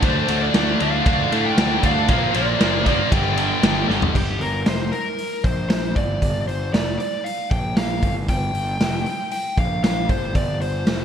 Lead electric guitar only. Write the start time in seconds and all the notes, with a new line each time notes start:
0.04 C5
0.42 D5
0.82 F5
1.46 G5
1.85 F5
2.10 F5
2.35 D5
2.87 D5
3.12 G5
4.16 G4
4.42 A#4
4.67 C5
4.92 A#4
5.44 C5
5.69 C5
5.96 D5
6.47 C5
6.73 D5
6.99 D5
7.24 F5
7.51 G5
7.77 F5
8.29 G5
9.32 G5
9.59 F5
9.84 F5
10.10 C5
10.36 D5
10.62 C5